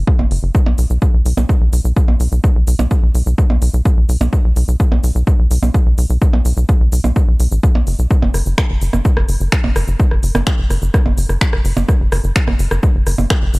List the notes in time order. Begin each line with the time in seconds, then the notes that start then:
0.07 kick
0.19 F#1, percussion blips
0.31 F#1, open hi-hat
0.43 F#1
0.55 kick, shaker
0.66 B1, percussion blips
0.78 B1, open hi-hat, shaker
0.90 B1, shaker
1.02 kick, shaker
1.14 B1
1.26 B1, open hi-hat, shaker
1.37 B1, percussion blips, shaker
1.49 kick, shaker
1.61 B1
1.73 B1, open hi-hat, shaker
1.85 B1, shaker
1.96 kick, shaker
2.08 B1, percussion blips
2.20 B1, open hi-hat, shaker
2.32 B1, shaker
2.44 kick, shaker
2.56 B1
2.67 B1, open hi-hat, shaker
2.79 B1, percussion blips, shaker
2.91 kick, shaker
3.03 B1
3.15 B1, open hi-hat, shaker
3.26 B1, shaker
3.38 kick, shaker
3.50 B1, percussion blips
3.62 B1, open hi-hat, shaker
3.74 B1, shaker
3.85 kick, shaker
3.97 B1
4.09 B1, open hi-hat, shaker
4.21 B1, percussion blips, shaker
4.33 kick, shaker
4.44 B1
4.56 B1, open hi-hat, shaker
4.68 B1, shaker
4.80 kick, shaker
4.92 B1, percussion blips
5.04 B1, open hi-hat, shaker
5.15 B1, shaker
5.27 kick, shaker
5.39 B1
5.51 B1, open hi-hat, shaker
5.62 B1, percussion blips, shaker
5.74 kick, shaker
5.86 B1
5.98 B1, open hi-hat, shaker
6.10 B1, shaker
6.22 kick, shaker
6.33 B1, percussion blips
6.45 B1, open hi-hat, shaker
6.57 B1, shaker
6.69 kick, shaker
6.80 B1
6.92 B1, open hi-hat, shaker
7.04 B1, percussion blips, shaker
7.16 kick, shaker
7.28 B1
7.40 B1, open hi-hat, shaker
7.52 A1, shaker
7.63 kick, shaker
7.75 B1, percussion blips
7.87 F#1, open hi-hat, shaker
7.99 B1, shaker
8.11 kick, shaker
8.22 F#1, percussion blips
8.34 F#1, cross-stick, open hi-hat, shaker
8.46 F#1, shaker
8.58 finger snap, kick, cross-stick, shaker
8.70 F#1
8.82 F#1, open hi-hat, shaker
8.93 F#1, cross-stick, percussion blips, shaker
9.05 kick, shaker
9.17 F#1, cross-stick
9.29 F#1, open hi-hat, shaker
9.40 F#1, shaker
9.52 finger snap, kick, cross-stick, shaker
9.64 F#1, percussion blips
9.76 F#1, cross-stick, open hi-hat, shaker
9.88 F#1, shaker
10.00 kick, shaker
10.11 F#1, cross-stick
10.23 F#1, open hi-hat, shaker
10.35 F#1, cross-stick, percussion blips, shaker
10.47 finger snap, kick, shaker
10.58 F#1
10.70 F#1, cross-stick, open hi-hat, shaker
10.82 F#1, shaker
10.94 kick, cross-stick, shaker
11.06 F#1, percussion blips
11.17 F#1, open hi-hat, shaker
11.29 F#1, cross-stick, shaker
11.41 finger snap, kick, shaker
11.53 F#1, cross-stick
11.65 F#1, open hi-hat, shaker
11.77 F#1, percussion blips, shaker
11.88 kick, cross-stick, shaker
12.00 F#1
12.12 F#1, cross-stick, open hi-hat, shaker
12.24 F#1, shaker
12.36 finger snap, kick, shaker
12.48 F#1, cross-stick, percussion blips
12.59 F#1, open hi-hat, shaker
12.71 F#1, cross-stick, shaker
12.83 kick, shaker
12.95 F#1
13.07 F#1, cross-stick, open hi-hat, shaker
13.18 F#1, percussion blips, shaker
13.30 finger snap, kick, cross-stick, shaker
13.42 F#1
13.54 F#1, open hi-hat, shaker